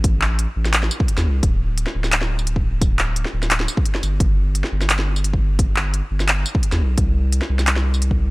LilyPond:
<<
  \new Staff \with { instrumentName = "Sub bass" } { \clef bass \time 4/4 \key g \mixolydian \tempo 4 = 173 a,,4~ a,,16 r16 a,,4 r8. e,16 c,8 | d,,4~ d,,16 r16 d,,2~ d,,8~ | d,,4~ d,,16 r16 d,,4 r4 g,,8 | g,,4~ g,,16 r16 g,,2~ g,,8~ |
g,,4~ g,,16 r16 g,,4 r8. e,16 b,,8 | c,4~ c,16 r16 c,2~ c,8 | }
  \new DrumStaff \with { instrumentName = "Drums" } \drummode { \time 4/4 <hh bd>8 hc8 hh8. <sn tamb>16 <hc hh>16 sn16 tamb16 bd16 hh16 <sn tamb>8. | <hh bd>4 hh16 sn8 <sn tamb>16 <hc hh>16 sn8 tamb16 hh16 bd8. | <hh bd tamb>8 <hc hh>8 hh16 sn8 <sn tamb>16 <hc hh>16 sn16 tamb16 bd16 hh16 sn16 <hh tamb>8 | <hh bd>4 hh16 sn8 <sn tamb>16 <hc hh>16 sn8 tamb16 hh16 bd8. |
<hh bd>8 hc8 hh8. <sn tamb>16 <hc hh>8 tamb16 bd16 hh16 <sn tamb>8. | <hh bd>4 hh16 sn8 <sn tamb>16 <hc hh>16 sn8 tamb16 hh16 bd8. | }
>>